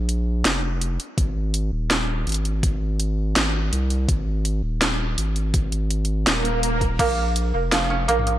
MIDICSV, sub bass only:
0, 0, Header, 1, 2, 480
1, 0, Start_track
1, 0, Tempo, 363636
1, 1554, Time_signature, 4, 2, 24, 8
1, 11071, End_track
2, 0, Start_track
2, 0, Title_t, "Sub bass"
2, 0, Program_c, 0, 38
2, 0, Note_on_c, 0, 34, 92
2, 577, Note_off_c, 0, 34, 0
2, 592, Note_on_c, 0, 29, 92
2, 1296, Note_off_c, 0, 29, 0
2, 1552, Note_on_c, 0, 32, 90
2, 2256, Note_off_c, 0, 32, 0
2, 2269, Note_on_c, 0, 27, 106
2, 2975, Note_off_c, 0, 27, 0
2, 2990, Note_on_c, 0, 32, 89
2, 4416, Note_off_c, 0, 32, 0
2, 4433, Note_on_c, 0, 32, 96
2, 4897, Note_off_c, 0, 32, 0
2, 4913, Note_on_c, 0, 36, 92
2, 5377, Note_off_c, 0, 36, 0
2, 5393, Note_on_c, 0, 32, 96
2, 6097, Note_off_c, 0, 32, 0
2, 6108, Note_on_c, 0, 27, 96
2, 6814, Note_off_c, 0, 27, 0
2, 6829, Note_on_c, 0, 32, 92
2, 8255, Note_off_c, 0, 32, 0
2, 8270, Note_on_c, 0, 27, 98
2, 9215, Note_off_c, 0, 27, 0
2, 9230, Note_on_c, 0, 34, 92
2, 9935, Note_off_c, 0, 34, 0
2, 9951, Note_on_c, 0, 29, 99
2, 10656, Note_off_c, 0, 29, 0
2, 10671, Note_on_c, 0, 34, 88
2, 11071, Note_off_c, 0, 34, 0
2, 11071, End_track
0, 0, End_of_file